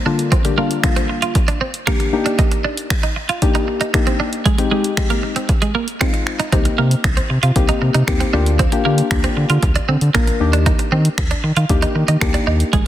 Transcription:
0.06 synth stab D3 G3 A#3 D4 F4, clean electric guitar D4
0.19 closed hi-hat
0.32 clean electric guitar C4, kick, closed hi-hat
0.45 synth stab D3 G3 A#3 D4 G4, muted clean electric guitar stroke, closed hi-hat
0.57 synth stab D3 G3 A#3 D4 F4, clean electric guitar A#3
0.71 closed hi-hat
0.83 synth stab D3 G3 A#3 D4 F4, finger snap, kick, closed hi-hat
0.96 clean electric guitar C4, closed hi-hat
1.10 muted clean electric guitar stroke
1.22 clean electric guitar F4, closed hi-hat
1.35 muted clean electric guitar stroke, kick, closed hi-hat
1.48 clean electric guitar D4, closed hi-hat
1.61 clean electric guitar C4
1.74 closed hi-hat
1.87 synth stab D3 G3 A#3 D4 G4, clean electric guitar A#3, finger snap, kick, closed hi-hat
2.00 muted clean electric guitar stroke, closed hi-hat
2.13 synth stab A#3 D4 D#4 G4
2.26 clean electric guitar D4, closed hi-hat
2.39 clean electric guitar D#4, kick, closed hi-hat
2.51 muted clean electric guitar stroke, closed hi-hat
2.65 clean electric guitar D4
2.77 closed hi-hat
2.90 finger snap, kick, closed hi-hat
3.03 clean electric guitar D#4, closed hi-hat
3.16 muted clean electric guitar stroke
3.29 clean electric guitar F4, closed hi-hat
3.42 synth stab A#3 D4 D#4 G4, kick, closed hi-hat
3.55 clean electric guitar D#4, closed hi-hat
3.68 muted clean electric guitar stroke
3.81 clean electric guitar D#4, closed hi-hat
3.94 synth stab A#3 D4 D#4 G4, finger snap, muted clean electric guitar stroke, kick, closed hi-hat
4.07 clean electric guitar C4, closed hi-hat
4.20 clean electric guitar D4
4.33 closed hi-hat
4.46 clean electric guitar G#3, kick, closed hi-hat
4.58 synth stab G#3 C4 D#4 G4, muted clean electric guitar stroke, closed hi-hat
4.71 synth stab G#3 C4 D#4 G4, clean electric guitar G#3
4.84 closed hi-hat
4.97 synth stab G#3 C4 D#4 G4, finger snap, kick, closed hi-hat
5.10 clean electric guitar A#3, closed hi-hat
5.23 muted clean electric guitar stroke
5.36 clean electric guitar C4, closed hi-hat
5.49 muted clean electric guitar stroke, kick, closed hi-hat
5.62 clean electric guitar G#3, closed hi-hat
5.75 clean electric guitar A#3
5.88 closed hi-hat
6.01 synth stab G#3 C4 D#4 F4, clean electric guitar C4, finger snap, kick, closed hi-hat
6.14 muted clean electric guitar stroke, closed hi-hat
6.27 finger snap
6.40 clean electric guitar D#4, closed hi-hat
6.52 analog synth bass C2, synth stab A#3 C4 D#4 G4, clean electric guitar C4, kick, closed hi-hat
6.65 muted clean electric guitar stroke, closed hi-hat
6.78 analog synth bass C3, clean electric guitar A#3
6.91 closed hi-hat
7.04 analog synth bass C2, finger snap, kick, closed hi-hat
7.17 clean electric guitar C4, closed hi-hat
7.30 analog synth bass C3, muted clean electric guitar stroke
7.43 analog synth bass C3, clean electric guitar F4, closed hi-hat
7.56 analog synth bass C2, synth stab A#3 C4 D#4 G4, kick, closed hi-hat
7.69 clean electric guitar D#4, closed hi-hat
7.82 analog synth bass C3, muted clean electric guitar stroke
7.94 analog synth bass C3, clean electric guitar D#4, closed hi-hat
8.07 analog synth bass D#2, synth stab A#3 C4 D#4 G4, finger snap, muted clean electric guitar stroke, kick, closed hi-hat
8.20 clean electric guitar C4, closed hi-hat
8.33 analog synth bass D2, synth stab A#3 D4 F4 G4, clean electric guitar D4
8.46 closed hi-hat
8.59 clean electric guitar C4, kick, closed hi-hat
8.72 synth stab A#3 D4 F4 G4, muted clean electric guitar stroke, closed hi-hat
8.85 analog synth bass D3, synth stab A#3 D4 F4 G4, clean electric guitar A#3
8.98 closed hi-hat
9.11 analog synth bass D2, synth stab A#3 D4 F4 G4, finger snap, kick, closed hi-hat
9.24 clean electric guitar C4, closed hi-hat
9.37 analog synth bass D3, muted clean electric guitar stroke
9.50 analog synth bass D3, clean electric guitar F4, closed hi-hat
9.63 analog synth bass D2, muted clean electric guitar stroke, kick, closed hi-hat
9.75 clean electric guitar D4, closed hi-hat
9.89 analog synth bass D3, clean electric guitar C4
10.01 analog synth bass D3, closed hi-hat
10.14 analog synth bass A#1, synth stab A#3 D4 F4 A#4, clean electric guitar A#3, finger snap, kick, closed hi-hat
10.27 muted clean electric guitar stroke, closed hi-hat
10.40 analog synth bass D#2, synth stab A#3 D4 D#4 G4
10.53 clean electric guitar D4, closed hi-hat
10.66 clean electric guitar D#4, kick, closed hi-hat
10.79 muted clean electric guitar stroke, closed hi-hat
10.92 analog synth bass D#3, clean electric guitar C4
11.05 closed hi-hat
11.18 analog synth bass D#2, finger snap, kick, closed hi-hat
11.31 clean electric guitar D4, closed hi-hat
11.44 analog synth bass D#3, muted clean electric guitar stroke
11.56 analog synth bass D#3, clean electric guitar F4, closed hi-hat
11.69 analog synth bass D#2, synth stab A#3 D4 D#4 G4, kick, closed hi-hat
11.82 clean electric guitar D#4, closed hi-hat
11.95 analog synth bass D#3, muted clean electric guitar stroke
12.08 analog synth bass D#3, clean electric guitar D#4, closed hi-hat
12.21 analog synth bass D2, synth stab A#3 D4 D#4 G4, finger snap, muted clean electric guitar stroke, kick, closed hi-hat
12.34 clean electric guitar D4, closed hi-hat
12.47 analog synth bass D#2, clean electric guitar D#4
12.60 closed hi-hat
12.73 analog synth bass G#1, clean electric guitar G#3, kick, closed hi-hat

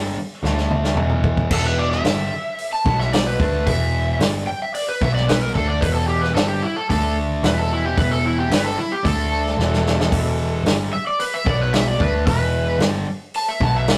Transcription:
Already playing: picked electric bass G1, distorted electric guitar G2 D3 G3
0.43 picked electric bass D2, distorted electric guitar D3 A3 D4, snare
0.58 snare
0.71 mid tom
0.84 snare
0.96 picked electric bass E1, distorted electric guitar E2 B2 E3, mid tom
1.10 mid tom
1.24 kick
1.37 kick
1.50 picked electric bass E1, distorted electric guitar E2 B2 E3, electric slide guitar A4, kick, crash
1.66 electric slide guitar B4
1.79 electric slide guitar D5
1.91 electric slide guitar E5, snare
2.04 picked electric bass G1, distorted electric guitar G2 D3 G3, snare, open hi-hat
2.58 open hi-hat
2.73 electric slide guitar A5
2.85 picked electric bass B1, distorted electric guitar B2 F#3 B3, kick
2.99 electric slide guitar E5, snare
3.13 electric slide guitar D5, snare, open hi-hat
3.26 electric slide guitar B4
3.40 picked electric bass D2, distorted electric guitar D3 A3 D4, kick
3.66 picked electric bass E1, distorted electric guitar E2 B2 E3, electric slide guitar E5, kick, open hi-hat
4.20 picked electric bass G1, distorted electric guitar G2 D3 G3, snare, open hi-hat
4.47 electric slide guitar G5
4.62 electric slide guitar E5
4.75 electric slide guitar D5, open hi-hat
4.88 electric slide guitar B4
5.01 picked electric bass B1, distorted electric guitar B2 F#3 B3, electric slide guitar E5, kick
5.15 electric slide guitar D5, snare
5.28 electric slide guitar B4, snare, open hi-hat
5.42 electric slide guitar A#4
5.54 picked electric bass D2, distorted electric guitar D3 A3 D4, electric slide guitar A4, kick
5.68 electric slide guitar D5
5.81 picked electric bass E1, distorted electric guitar E2 B2 E3, electric slide guitar B4, kick, open hi-hat
5.94 electric slide guitar A4
6.08 electric slide guitar G4
6.21 electric slide guitar B4, snare
6.35 picked electric bass G1, distorted electric guitar G2 D3 G3, electric slide guitar A4, snare, open hi-hat
6.49 electric slide guitar G4
6.63 electric slide guitar E4
6.76 electric slide guitar A4
6.90 picked electric bass D2, distorted electric guitar D3 A3 D4, electric slide guitar A4, kick, open hi-hat
7.43 picked electric bass E1, distorted electric guitar E2 B2 E3, electric slide guitar B4, snare, open hi-hat
7.58 electric slide guitar A4
7.72 electric slide guitar E4
7.85 electric slide guitar G4
7.97 picked electric bass E1, distorted electric guitar E2 B2 E3, electric slide guitar B4, kick, open hi-hat
8.11 electric slide guitar A4
8.25 electric slide guitar E4
8.38 electric slide guitar G4
8.50 picked electric bass G1, distorted electric guitar G2 D3 G3, electric slide guitar B4, snare, open hi-hat
8.64 electric slide guitar A4
8.78 electric slide guitar E4
8.92 electric slide guitar G4
9.04 picked electric bass D2, distorted electric guitar D3 A3 D4, electric slide guitar A4, kick, open hi-hat
9.46 snare
9.57 picked electric bass E1, distorted electric guitar E2 B2 E3, snare
9.73 snare
9.87 snare
10.00 snare
10.11 picked electric bass E1, distorted electric guitar E2 B2 E3, kick, open hi-hat
10.64 picked electric bass G1, distorted electric guitar G2 D3 G3, snare, open hi-hat
10.93 electric slide guitar E5
11.07 electric slide guitar D5
11.20 electric slide guitar B4, open hi-hat
11.34 electric slide guitar E5
11.45 picked electric bass B1, distorted electric guitar B2 F#3 B3, electric slide guitar D5, kick
11.61 electric slide guitar B4
11.73 electric slide guitar E5, snare, open hi-hat
11.87 electric slide guitar D5
11.99 picked electric bass D2, distorted electric guitar D3 A3 D4, electric slide guitar B4, kick
12.25 picked electric bass E1, distorted electric guitar E2 B2 E3, electric slide guitar B4, kick, open hi-hat
12.79 picked electric bass G1, distorted electric guitar G2 D3 G3, snare, open hi-hat
13.34 electric slide guitar A5, open hi-hat
13.49 electric slide guitar E5
13.60 picked electric bass B1, distorted electric guitar B2 F#3 B3, electric slide guitar A5, kick
13.76 electric slide guitar E5
13.88 electric slide guitar D5, snare, open hi-hat

